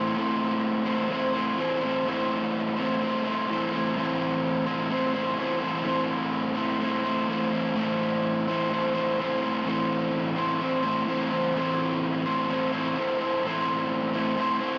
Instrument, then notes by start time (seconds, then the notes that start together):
overdriven electric guitar
Already playing: A2 E3 A3 C4 E4 C5
0.14 A2 E3 A3 C4 E4
0.18 C5
0.85 A3 C4 E4 C5
1.10 A3 C4 E4 C5
1.33 C4 E4 C5
1.37 A3
1.57 A2 E3 A3 C4 E4 C5
1.81 C4 E4 C5
1.85 A3
2.06 A2 E3 A3 C4 E4
2.10 C5
2.76 C4 E4 C5
2.81 A3
3.01 A3 C4 E4 C5
3.24 A3 C4 E4 C5
3.49 A2 E3 A3 C4 E4
3.53 C5
3.73 A3 C4 E4 C5
3.96 A2 E3 A3 C4 E4
4.00 C5
4.67 C4 E4 C5
4.71 A3
4.89 A3 C4 E4
4.94 C5
5.14 A3 C4 E4 C5
5.37 A2 E3 A3 C4 E4 C5
5.60 A3 C4 E4 C5
5.84 A2 E3 A3 C4 E4 C5
6.55 C4 E4 C5
6.59 A3
6.81 A3 C4 E4 C5
7.04 A3 C4 E4 C5
7.27 A2 E3 A3 C4 E4
7.32 C5
7.51 C4 E4 C5
7.55 A3
7.74 A2 E3 A3 C4 E4 C5
8.47 A3 C4 E4 C5
8.70 A3 C4 E4 C5
8.95 A3 C4 E4 C5
9.18 A2 E3 A3 C4 E4 C5
9.42 A3 C4 E4 C5
9.65 A2 E3 A3 C4 E4
9.69 C5
10.36 C4 E4 C5
10.40 A3
10.59 A3 C4 E4
10.63 C5
10.83 C4 E4 C5
10.87 A3
11.06 A2 E3 A3 C4 E4 C5
11.31 A3 C4 E4 C5
11.54 A2 E3 A3 C4 E4
11.59 C5
12.26 C4 E4 C5
12.30 A3
12.48 A3 C4 E4
12.53 C5
12.72 A3 C4 E4 C5
12.96 A2 E3 A3 C4 E4 C5
13.20 A3 C4 E4 C5
13.43 A2 E3 A3 C4 E4 C5
14.13 C4 E4 C5
14.18 A3
14.37 A3 C4 E4 C5
14.60 A3 C4 E4 C5